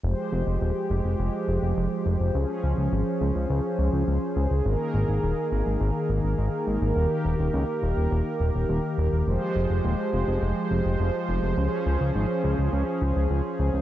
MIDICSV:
0, 0, Header, 1, 3, 480
1, 0, Start_track
1, 0, Key_signature, -4, "minor"
1, 0, Tempo, 576923
1, 30, Time_signature, 4, 2, 24, 8
1, 11495, End_track
2, 0, Start_track
2, 0, Title_t, "Analog synth pad"
2, 0, Program_c, 0, 89
2, 30, Note_on_c, 0, 53, 79
2, 30, Note_on_c, 0, 56, 76
2, 30, Note_on_c, 0, 67, 73
2, 30, Note_on_c, 0, 72, 87
2, 1931, Note_off_c, 0, 56, 0
2, 1931, Note_off_c, 0, 67, 0
2, 1951, Note_on_c, 0, 61, 73
2, 1951, Note_on_c, 0, 68, 75
2, 3837, Note_off_c, 0, 53, 0
2, 3837, Note_off_c, 0, 72, 0
2, 3851, Note_off_c, 0, 61, 0
2, 3869, Note_on_c, 0, 51, 79
2, 3869, Note_on_c, 0, 58, 73
2, 3869, Note_on_c, 0, 70, 91
2, 5757, Note_off_c, 0, 68, 0
2, 5788, Note_on_c, 0, 67, 69
2, 7676, Note_off_c, 0, 51, 0
2, 7676, Note_off_c, 0, 58, 0
2, 7676, Note_off_c, 0, 70, 0
2, 7709, Note_on_c, 0, 53, 83
2, 7709, Note_on_c, 0, 56, 72
2, 7709, Note_on_c, 0, 72, 92
2, 9596, Note_off_c, 0, 67, 0
2, 9610, Note_off_c, 0, 56, 0
2, 9630, Note_on_c, 0, 68, 69
2, 9631, Note_on_c, 0, 61, 71
2, 11495, Note_off_c, 0, 53, 0
2, 11495, Note_off_c, 0, 61, 0
2, 11495, Note_off_c, 0, 68, 0
2, 11495, Note_off_c, 0, 72, 0
2, 11495, End_track
3, 0, Start_track
3, 0, Title_t, "Analog synth bass"
3, 0, Program_c, 1, 38
3, 29, Note_on_c, 1, 29, 98
3, 119, Note_off_c, 1, 29, 0
3, 269, Note_on_c, 1, 29, 91
3, 359, Note_off_c, 1, 29, 0
3, 389, Note_on_c, 1, 29, 87
3, 479, Note_off_c, 1, 29, 0
3, 509, Note_on_c, 1, 27, 100
3, 598, Note_off_c, 1, 27, 0
3, 749, Note_on_c, 1, 29, 92
3, 839, Note_off_c, 1, 29, 0
3, 869, Note_on_c, 1, 29, 78
3, 958, Note_off_c, 1, 29, 0
3, 989, Note_on_c, 1, 29, 102
3, 1079, Note_off_c, 1, 29, 0
3, 1230, Note_on_c, 1, 29, 94
3, 1319, Note_off_c, 1, 29, 0
3, 1350, Note_on_c, 1, 29, 80
3, 1439, Note_off_c, 1, 29, 0
3, 1470, Note_on_c, 1, 29, 97
3, 1559, Note_off_c, 1, 29, 0
3, 1711, Note_on_c, 1, 29, 94
3, 1800, Note_off_c, 1, 29, 0
3, 1831, Note_on_c, 1, 29, 82
3, 1920, Note_off_c, 1, 29, 0
3, 1952, Note_on_c, 1, 37, 100
3, 2040, Note_off_c, 1, 37, 0
3, 2191, Note_on_c, 1, 37, 93
3, 2280, Note_off_c, 1, 37, 0
3, 2311, Note_on_c, 1, 37, 85
3, 2399, Note_off_c, 1, 37, 0
3, 2430, Note_on_c, 1, 32, 105
3, 2519, Note_off_c, 1, 32, 0
3, 2670, Note_on_c, 1, 37, 96
3, 2759, Note_off_c, 1, 37, 0
3, 2790, Note_on_c, 1, 37, 79
3, 2879, Note_off_c, 1, 37, 0
3, 2910, Note_on_c, 1, 37, 105
3, 2999, Note_off_c, 1, 37, 0
3, 3149, Note_on_c, 1, 37, 91
3, 3239, Note_off_c, 1, 37, 0
3, 3269, Note_on_c, 1, 37, 81
3, 3359, Note_off_c, 1, 37, 0
3, 3390, Note_on_c, 1, 37, 96
3, 3479, Note_off_c, 1, 37, 0
3, 3630, Note_on_c, 1, 37, 94
3, 3719, Note_off_c, 1, 37, 0
3, 3749, Note_on_c, 1, 37, 81
3, 3839, Note_off_c, 1, 37, 0
3, 3871, Note_on_c, 1, 32, 100
3, 3959, Note_off_c, 1, 32, 0
3, 4110, Note_on_c, 1, 32, 94
3, 4199, Note_off_c, 1, 32, 0
3, 4230, Note_on_c, 1, 32, 81
3, 4319, Note_off_c, 1, 32, 0
3, 4351, Note_on_c, 1, 27, 101
3, 4440, Note_off_c, 1, 27, 0
3, 4591, Note_on_c, 1, 32, 95
3, 4680, Note_off_c, 1, 32, 0
3, 4711, Note_on_c, 1, 32, 77
3, 4799, Note_off_c, 1, 32, 0
3, 4830, Note_on_c, 1, 32, 104
3, 4919, Note_off_c, 1, 32, 0
3, 5069, Note_on_c, 1, 32, 96
3, 5159, Note_off_c, 1, 32, 0
3, 5190, Note_on_c, 1, 32, 77
3, 5279, Note_off_c, 1, 32, 0
3, 5309, Note_on_c, 1, 32, 97
3, 5399, Note_off_c, 1, 32, 0
3, 5550, Note_on_c, 1, 32, 92
3, 5639, Note_off_c, 1, 32, 0
3, 5670, Note_on_c, 1, 32, 81
3, 5759, Note_off_c, 1, 32, 0
3, 5790, Note_on_c, 1, 27, 97
3, 5879, Note_off_c, 1, 27, 0
3, 6030, Note_on_c, 1, 27, 96
3, 6119, Note_off_c, 1, 27, 0
3, 6149, Note_on_c, 1, 27, 83
3, 6239, Note_off_c, 1, 27, 0
3, 6270, Note_on_c, 1, 37, 105
3, 6359, Note_off_c, 1, 37, 0
3, 6509, Note_on_c, 1, 27, 94
3, 6599, Note_off_c, 1, 27, 0
3, 6630, Note_on_c, 1, 27, 78
3, 6719, Note_off_c, 1, 27, 0
3, 6749, Note_on_c, 1, 27, 103
3, 6839, Note_off_c, 1, 27, 0
3, 6989, Note_on_c, 1, 27, 91
3, 7079, Note_off_c, 1, 27, 0
3, 7110, Note_on_c, 1, 27, 79
3, 7199, Note_off_c, 1, 27, 0
3, 7230, Note_on_c, 1, 27, 99
3, 7319, Note_off_c, 1, 27, 0
3, 7470, Note_on_c, 1, 27, 97
3, 7559, Note_off_c, 1, 27, 0
3, 7590, Note_on_c, 1, 27, 78
3, 7679, Note_off_c, 1, 27, 0
3, 7710, Note_on_c, 1, 29, 97
3, 7799, Note_off_c, 1, 29, 0
3, 7950, Note_on_c, 1, 29, 97
3, 8039, Note_off_c, 1, 29, 0
3, 8070, Note_on_c, 1, 29, 84
3, 8159, Note_off_c, 1, 29, 0
3, 8190, Note_on_c, 1, 27, 99
3, 8279, Note_off_c, 1, 27, 0
3, 8430, Note_on_c, 1, 29, 90
3, 8519, Note_off_c, 1, 29, 0
3, 8550, Note_on_c, 1, 29, 80
3, 8639, Note_off_c, 1, 29, 0
3, 8669, Note_on_c, 1, 29, 104
3, 8759, Note_off_c, 1, 29, 0
3, 8910, Note_on_c, 1, 29, 90
3, 8999, Note_off_c, 1, 29, 0
3, 9030, Note_on_c, 1, 29, 79
3, 9119, Note_off_c, 1, 29, 0
3, 9149, Note_on_c, 1, 29, 102
3, 9239, Note_off_c, 1, 29, 0
3, 9390, Note_on_c, 1, 29, 92
3, 9479, Note_off_c, 1, 29, 0
3, 9510, Note_on_c, 1, 29, 77
3, 9599, Note_off_c, 1, 29, 0
3, 9629, Note_on_c, 1, 37, 95
3, 9719, Note_off_c, 1, 37, 0
3, 9869, Note_on_c, 1, 37, 95
3, 9959, Note_off_c, 1, 37, 0
3, 9989, Note_on_c, 1, 37, 87
3, 10079, Note_off_c, 1, 37, 0
3, 10109, Note_on_c, 1, 32, 101
3, 10198, Note_off_c, 1, 32, 0
3, 10349, Note_on_c, 1, 37, 95
3, 10439, Note_off_c, 1, 37, 0
3, 10469, Note_on_c, 1, 37, 76
3, 10558, Note_off_c, 1, 37, 0
3, 10588, Note_on_c, 1, 37, 100
3, 10678, Note_off_c, 1, 37, 0
3, 10829, Note_on_c, 1, 37, 91
3, 10919, Note_off_c, 1, 37, 0
3, 10948, Note_on_c, 1, 37, 83
3, 11038, Note_off_c, 1, 37, 0
3, 11068, Note_on_c, 1, 37, 100
3, 11158, Note_off_c, 1, 37, 0
3, 11309, Note_on_c, 1, 37, 90
3, 11398, Note_off_c, 1, 37, 0
3, 11429, Note_on_c, 1, 37, 85
3, 11495, Note_off_c, 1, 37, 0
3, 11495, End_track
0, 0, End_of_file